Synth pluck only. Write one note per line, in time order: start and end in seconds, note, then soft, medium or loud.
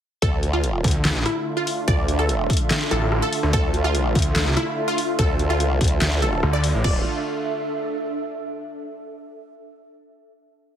0.22 0.49 A4 loud
0.53 0.80 F4 loud
1.26 1.52 E4 medium
1.57 1.83 F4 loud
1.88 2.14 D5 loud
2.19 2.45 A4 loud
2.91 3.18 A4 loud
3.22 3.49 A4 loud
3.53 3.80 A4 loud
3.84 4.11 F4 loud
4.57 4.83 E4 loud
4.88 5.14 F4 loud
5.19 5.45 A4 loud
5.50 5.77 F4 loud
6.22 6.49 A4 medium
6.53 6.80 D5 loud
6.84 7.00 D5 loud